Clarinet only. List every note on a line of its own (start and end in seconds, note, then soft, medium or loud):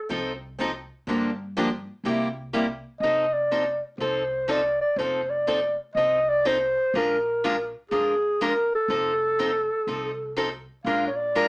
0.00 0.37 A4 loud
3.01 3.35 D#5 medium
3.33 3.82 D5 medium
4.00 4.52 C5 medium
4.50 4.80 D5 medium
4.81 5.00 D5 medium
4.98 5.31 C5 medium
5.30 5.78 D5 medium
5.95 6.31 D#5 medium
6.29 6.49 D5 medium
6.47 6.99 C5 loud
6.98 7.76 A#4 medium
7.91 8.43 G#4 medium
8.42 8.72 A#4 medium
8.75 10.65 A4 medium
10.84 11.05 F5 medium
11.07 11.17 C#5 medium
11.16 11.48 D5 medium